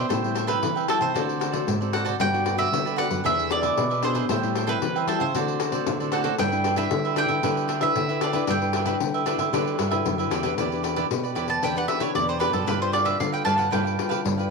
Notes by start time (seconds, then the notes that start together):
Already playing: C5
0.09 A2 G3 C4 E4 A4 C5 E5 G5, pandeiro
0.24 G3 C4 E4, pandeiro
0.35 A4 C5 E5 G5, pandeiro
0.47 G3 C4 E4 A4 B4 C5 E5 G5, pandeiro
0.62 E3, pandeiro
0.76 C5 E5 G5, pandeiro
0.88 G3 C4 E4 A4 C5 E5 G5, pandeiro
1.00 C3 C5 E5 G5, pandeiro
1.15 D3 A3 C4 F#4 A4 C5 D5, pandeiro
1.29 pandeiro
1.39 F#4 A4 C5 D5, pandeiro
1.52 A3 C4 F#4 A4 C5 D5, pandeiro
1.67 G#2, pandeiro
1.81 C4 F#4 A4 C5 D5, pandeiro
1.93 F#4 A4 C5 D5 F#5, pandeiro
2.04 F#4 A4 C5 D5, pandeiro
2.20 G2 G3 B3 D4 F#4 G4 B4 D5 G5, pandeiro
2.33 B3 D4 F#4, pandeiro
2.45 F#4 G4 B4 D5, pandeiro
2.58 F#4 G4 B4 D5 E5, pandeiro
2.72 D3 B3 D4 F#4, pandeiro
2.85 G4 B4 D5, pandeiro
2.96 B3 D4 F#4 G4 B4 D5 F#5, pandeiro
3.09 F#2 B4 D5, pandeiro
3.24 E2 E3 B3 D4 G#4 B4 E5, pandeiro
3.39 pandeiro
3.50 B3 D4 G#4 B4 D5 E5, pandeiro
3.62 G#4 B4 E5, pandeiro
3.77 B2, pandeiro
3.90 G#4 B4 E5, pandeiro
4.02 B3 D4 G#4 B4 C5 E5, pandeiro
4.15 D4 G#4 B4 E5, pandeiro
4.29 A2 G3 C4 E4 A4 C5 E5 G5, pandeiro
4.43 G3 C4 E4, pandeiro
4.55 A4 C5 E5 G5, pandeiro
4.67 G3 C4 E4 A4 B4 C5 E5 G5, pandeiro
4.82 E3, pandeiro
4.96 C5 E5 G5, pandeiro
5.07 G3 C4 E4 A4 C5 E5 G5, pandeiro
5.20 C#3 C5 E5 G5, pandeiro
5.34 D3 A3 C4 F#4 A4 C5 D5, pandeiro
5.48 pandeiro
5.59 F#4 A4 C5 D5, pandeiro
5.71 A3 C4 F#4 A4 C5 D5, pandeiro
5.87 A2 D3, pandeiro
6.00 A3 C4 F#4 A4 C5 D5, pandeiro
6.12 F#4 A4 C5 D5 F#5, pandeiro
6.24 F#4 A4 C5 D5, pandeiro
6.38 G2 G3 D4 E4 G4 B4 E5 G5, pandeiro
6.52 D4 E4 B4, pandeiro
6.64 D4 G4 B4 E5, pandeiro
6.76 D4 E4 G4 B4 E5, pandeiro
6.91 D3, pandeiro
7.05 G4 B4 E5, pandeiro
7.16 D4 E4 G4 B4 E5 G5, pandeiro
7.28 D3 G4 B4 E5, pandeiro
7.43 D3 G3 D4 E4 G4 B4 E5, pandeiro
7.57 pandeiro
7.68 D4 G4 B4 E5, pandeiro
7.81 D4 E4 G4 B4 E5, pandeiro
7.96 D3, pandeiro
8.09 D4 E4 G4 B4 E5, pandeiro
8.21 D4 G4 B4 D5 E5, pandeiro
8.33 D4 E4 G4 B4 E5, pandeiro
8.47 G2 G3 D4 G4 B4 E5 G5, pandeiro
8.62 D4 E4 B4, pandeiro
8.73 D4 G4 B4 E5, pandeiro
8.86 D4 E4 G4 B4 E5, pandeiro
9.00 D3, pandeiro
9.14 G4 B4 E5, pandeiro
9.26 D4 E4 G4 B4 E5, pandeiro
9.38 D3 G4 B4 E5, pandeiro
9.53 D3 G3 D4 E4 G4 B4 E5, pandeiro
9.67 pandeiro
9.78 G2 D4 G4 B4 E5, pandeiro
9.91 D4 E4 G4 B4 E5, pandeiro
10.05 F#2 D3, pandeiro
10.18 D4 E4 G4 B4 E5, pandeiro
10.30 E2 D4 G4 B4 E5, pandeiro
10.43 D4 G4 B4 E5, pandeiro
10.58 E2 E3 E4 G4 B4 D5, pandeiro
10.72 D4 G4 B4, pandeiro
10.83 E4 G4 B4 D5, pandeiro
10.96 E4 G4 B4 D5, pandeiro
11.10 B2 D4 G4 B4, pandeiro
11.23 G4 B4 D5, pandeiro
11.35 E2 E4 G4 B4 D5, pandeiro
11.48 G4 B4 D5 A5, pandeiro
11.62 E2 E3 D4 E4 G4 B4 D5 G5, pandeiro
11.76 D4 G4 B4 D5 F#5, pandeiro
11.88 D4 G4 B4 E5, pandeiro
12.00 D4 E4 G4 B4 C#5 D5, pandeiro
12.15 E2 B2 D5, pandeiro
12.27 G4 B4 C5 D5, pandeiro
12.39 D4 E4 G4 B4 D5, pandeiro
12.53 F#2 G4 A4 B4 D5, pandeiro
12.66 G2 G3 D4 F4 G4 B4 F5, pandeiro
12.82 D4 F4 B4 C5, pandeiro
12.92 D4 G4 B4 D5 F5, pandeiro
13.05 D4 G4 B4 E5 F5, pandeiro
13.20 D3 D4 F4 B4 F5, pandeiro
13.32 G4 B4 F5 G5, pandeiro
13.44 G2 D4 G4 B4 F5 A5, pandeiro
13.56 D4 F4 G4 B4 F5 F#5, pandeiro
13.71 G2 G3 D4 F4 G4 B4 F5 G5, pandeiro
13.84 G4 B4 F5, pandeiro
13.99 D4 F4 B4, pandeiro
14.09 D4 G4 B4 F5, pandeiro
14.25 G2 D3, pandeiro
14.37 D4 F4 G4 B4 F5, pandeiro